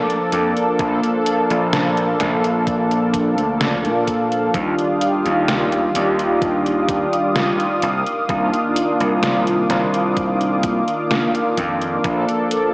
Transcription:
Already playing: analog polysynth F3 A#3 D4 A4, analog synth pad A#3 F5 A5 D6
0.10 closed hi-hat
0.32 slap bass F2, closed hi-hat
0.57 closed hi-hat
0.78 slap bass A#1, analog polysynth F3 A#3 D4 A4, kick, closed hi-hat
1.04 closed hi-hat
1.26 closed hi-hat
1.50 slap bass A#1, closed hi-hat
1.73 snare, closed hi-hat
1.97 closed hi-hat
2.19 slap bass A#1, analog polysynth F3 A#3 D4 A4, kick, snare, closed hi-hat
2.44 closed hi-hat
2.67 kick, closed hi-hat
2.91 closed hi-hat
3.14 kick, closed hi-hat
3.38 slap bass D2, closed hi-hat
3.61 snare, closed hi-hat
3.85 slap bass A#2, closed hi-hat
4.07 kick, closed hi-hat
4.32 closed hi-hat
4.53 slap bass D#2, analog polysynth D#3 G3 D4 F4, analog synth pad G4 D6 D#6, kick, closed hi-hat
4.79 closed hi-hat
5.01 closed hi-hat
5.25 slap bass D#2, closed hi-hat
5.48 snare, closed hi-hat
5.72 closed hi-hat
5.93 slap bass D#2, analog polysynth D#3 G3 D4 F4, closed hi-hat
6.19 closed hi-hat
6.42 kick, closed hi-hat
6.66 closed hi-hat
6.89 kick, closed hi-hat
7.13 closed hi-hat
7.36 snare, closed hi-hat
7.60 closed hi-hat
7.82 slap bass C2, analog synth pad A#3, closed hi-hat
8.07 closed hi-hat
8.28 slap bass C2, analog polysynth D#3 A#3 D4 F4, kick, closed hi-hat
8.54 closed hi-hat
8.76 closed hi-hat
9.00 slap bass C2, closed hi-hat
9.23 snare, closed hi-hat
9.47 closed hi-hat
9.68 slap bass C2, analog polysynth D#3 A#3 D4 F4, kick, snare, closed hi-hat
9.94 closed hi-hat
10.17 kick, closed hi-hat
10.41 closed hi-hat
10.63 kick, closed hi-hat
10.88 closed hi-hat
11.11 snare, closed hi-hat
11.35 closed hi-hat
11.57 slap bass F2, kick, closed hi-hat
11.81 closed hi-hat
12.02 slap bass A#1, analog polysynth F3 A#3 D4 A4, analog synth pad A5, kick, closed hi-hat
12.28 closed hi-hat
12.51 closed hi-hat

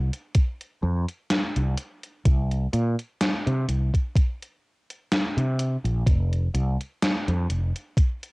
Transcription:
0.13 closed hi-hat
0.35 kick, closed hi-hat
0.61 closed hi-hat
0.83 fretless electric bass F2
1.08 closed hi-hat
1.30 snare, closed hi-hat
1.56 fretless electric bass C2, closed hi-hat
1.77 closed hi-hat
2.03 closed hi-hat
2.25 fretless electric bass C2, kick, closed hi-hat
2.51 closed hi-hat
2.73 fretless electric bass A#2, closed hi-hat
2.99 closed hi-hat
3.21 snare, closed hi-hat
3.47 fretless electric bass C3, closed hi-hat
3.68 fretless electric bass C2, closed hi-hat
3.94 kick, closed hi-hat
4.16 kick, closed hi-hat
4.43 closed hi-hat
4.90 closed hi-hat
5.12 snare, closed hi-hat
5.37 fretless electric bass C3, closed hi-hat
5.59 closed hi-hat
5.84 fretless electric bass A#1, closed hi-hat
6.07 fretless electric bass F1, kick, closed hi-hat
6.33 closed hi-hat
6.54 fretless electric bass C2, closed hi-hat
6.81 closed hi-hat
7.02 snare, closed hi-hat
7.28 fretless electric bass F2, closed hi-hat
7.50 fretless electric bass F1, closed hi-hat
7.76 closed hi-hat
7.97 kick, closed hi-hat
8.23 closed hi-hat

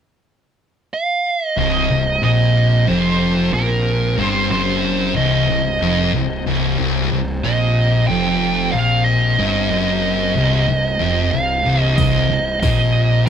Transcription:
0.94 lead electric guitar F5
1.44 lead electric guitar D#5
1.57 picked electric bass C1, distorted electric guitar C2, tonewheel organ C3 C4 G4, lead electric guitar D#5
1.89 picked electric bass C1, distorted electric guitar C2
2.22 picked electric bass A#1, distorted electric guitar A#2, lead electric guitar D#5
2.88 picked electric bass F1, distorted electric guitar F2, lead electric guitar C5
3.52 picked electric bass A#1, distorted electric guitar A#2, lead electric guitar A#4
4.17 picked electric bass G1, distorted electric guitar G2, lead electric guitar C5
4.50 picked electric bass F#1, distorted electric guitar F#2, lead electric guitar C5
5.15 picked electric bass C1, distorted electric guitar C2, lead electric guitar D#5
5.48 picked electric bass C1, distorted electric guitar C2
5.80 picked electric bass F1, distorted electric guitar F2
6.13 picked electric bass C1, distorted electric guitar C2
6.46 picked electric bass C1, distorted electric guitar C2
6.78 picked electric bass C1, distorted electric guitar C2
7.11 picked electric bass C1, distorted electric guitar C2
7.44 picked electric bass A#1, distorted electric guitar A#2, lead electric guitar D#5
8.07 picked electric bass F1, distorted electric guitar F2, lead electric guitar G5
8.72 picked electric bass A#1, distorted electric guitar A#2, lead electric guitar F5
9.04 lead electric guitar D#5
9.38 picked electric bass G1, distorted electric guitar G2
9.71 picked electric bass F#1, distorted electric guitar F#2
10.36 picked electric bass C1, distorted electric guitar C2
10.67 picked electric bass C1, distorted electric guitar C2
10.99 picked electric bass F1, distorted electric guitar F2
11.31 picked electric bass C1, distorted electric guitar C2, lead electric guitar F5
11.65 picked electric bass C1, distorted electric guitar C2
11.82 lead electric guitar D#5
11.96 picked electric bass C1, distorted electric guitar C2, lead electric guitar D#5, kick, open hi-hat
12.29 picked electric bass C1, distorted electric guitar C2
12.60 picked electric bass A#1, distorted electric guitar A#2, lead electric guitar D#5, kick, open hi-hat

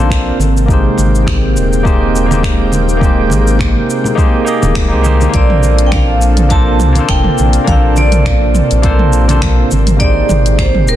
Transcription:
Already playing: analog synth bass A#1, analog synth pad C3 A#3 D4 A4, tine electric piano A#3 D4 F4 A4
0.00 tine electric piano C5
0.10 finger snap, kick, shaker
0.39 analog synth bass G#1, analog synth pad G#3 G5, high conga, shaker
0.57 shaker
0.66 tine electric piano A#3 D#4 G4, kick
0.70 tine electric piano G#4 C5, shaker
0.98 analog synth bass G#1, high conga, shaker
1.15 shaker
1.27 finger snap, kick, low conga, shaker
1.57 analog synth bass D#1, shaker
1.73 shaker
1.83 tine electric piano A#3 D#4 G4 G#4 C5, kick, shaker
2.16 shaker
2.26 tine electric piano A#3 D#4
2.30 tine electric piano G4 G#4 C5, high conga, shaker
2.43 finger snap, kick, shaker
2.72 high conga, shaker
2.89 shaker
2.97 tine electric piano A#3 D#4 G4
3.01 tine electric piano G#4 C5, kick, shaker
3.30 analog synth bass G#1, high conga, shaker
3.47 shaker
3.59 finger snap, kick, low conga, shaker
3.90 shaker
4.04 low conga, shaker
4.15 tine electric piano A#3 D#4 G4 G#4 C5, kick, shaker
4.45 tine electric piano A#3 D#4 G4 G#4 D#5, shaker
4.62 analog synth bass D#1, high conga, low conga, shaker
4.75 finger snap, kick, shaker
4.88 tine electric piano A#3 D#4 G4 G#4
4.93 analog synth bass C2, tine electric piano C5
5.02 tine electric piano A#3 D#4 G4 G#4, high conga, shaker
5.06 tine electric piano C5
5.21 high conga, shaker
5.29 tine electric piano A#3 D4
5.34 analog synth bass A#1, analog synth pad C3 D4 A4, tine electric piano F4 A4 C5, vibraphone D5, kick, closed hi-hat, shaker
5.50 mid tom
5.63 high conga, shaker
5.79 closed hi-hat, shaker
5.87 vibraphone G5
5.92 vibraphone F5, finger snap, kick, closed hi-hat, mid tom, low conga, shaker
6.22 shaker
6.37 closed hi-hat, mid tom, shaker
6.49 tine electric piano A#3 D4 F4 A4 C5, vibraphone A5, kick, closed hi-hat, shaker
6.80 analog synth bass C2, mid tom, shaker
6.93 tine electric piano A#3 D4 F4, closed hi-hat, high conga, shaker
6.99 tine electric piano A4 C5
7.09 analog synth bass F1, vibraphone G5, finger snap, kick, closed hi-hat, shaker
7.24 mid tom
7.38 analog synth bass A#1, high conga, shaker
7.53 closed hi-hat, shaker
7.64 analog synth bass A#1, tine electric piano A#3 D4 F4, vibraphone F5, kick, closed hi-hat, mid tom, shaker
7.70 tine electric piano A4 C5
7.97 vibraphone D5, high conga, shaker
8.12 closed hi-hat, mid tom, shaker
8.26 finger snap, kick, closed hi-hat, low conga, shaker
8.55 mid tom, shaker
8.71 analog synth bass A#1, closed hi-hat, shaker
8.82 tine electric piano A#3 D4 F4 A4 C5, kick, closed hi-hat, shaker
8.99 mid tom
9.13 shaker
9.27 tine electric piano A#3 D4 F4 A4 C5, closed hi-hat, high conga, low conga, shaker
9.42 finger snap, kick, closed hi-hat, mid tom, shaker
9.71 analog synth bass G#1, analog synth pad G#3 G5, high conga, shaker
9.87 closed hi-hat, mid tom, shaker
9.97 tine electric piano A#3 D#4 G4, vibraphone D5, kick, closed hi-hat, shaker
10.02 tine electric piano G#4 C5
10.29 analog synth bass G#1, mid tom, high conga, shaker
10.46 closed hi-hat, shaker
10.58 vibraphone C5, finger snap, kick, closed hi-hat, low conga, shaker
10.75 mid tom
10.88 analog synth bass D#1, vibraphone A#4, shaker

